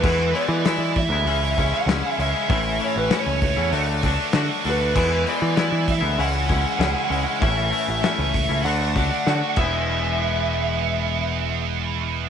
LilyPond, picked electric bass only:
\new Staff \with { instrumentName = "Picked electric bass" } { \clef bass \time 4/4 \key e \mixolydian \tempo 4 = 98 e,8 r16 e8 e8 d,16 cis,8 cis,16 r16 cis,16 r16 cis,16 r16 | a,,8 r16 a,,16 r16 cis,8 e,16 d,8 cis,16 r16 d16 r16 d,8 | e,8 r16 e8 e8 d,16 cis,8 cis,16 r16 cis,16 r16 cis,16 r16 | a,,8 r16 a,,16 r16 cis,8 cis,16 d,8 cis,16 r16 d16 r16 e,,8~ |
e,,1 | }